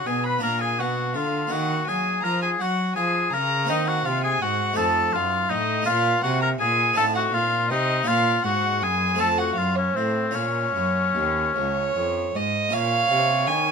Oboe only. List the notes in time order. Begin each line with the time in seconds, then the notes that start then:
0.06 G#4
0.26 B4
0.43 A#4
0.62 G#4
0.79 F#4
1.15 F4
1.51 F#4
1.88 G#4
2.24 A#4
2.42 G#4
2.61 F#4
2.96 G#4
3.34 A#4
3.69 D#4
3.88 F#4
4.06 F4
4.24 G#4
4.42 F#4
4.77 A4
5.13 F4
5.50 D#4
5.85 F4
6.23 F#4
6.42 A#4
6.60 G#4
6.97 A4
7.16 F#4
7.34 F4
7.71 D#4
8.08 F4
8.45 F#4
8.83 G#4
9.20 A4
9.39 F#4
9.57 F4
9.78 C#4
9.97 C4
10.36 C#4
12.74 C#5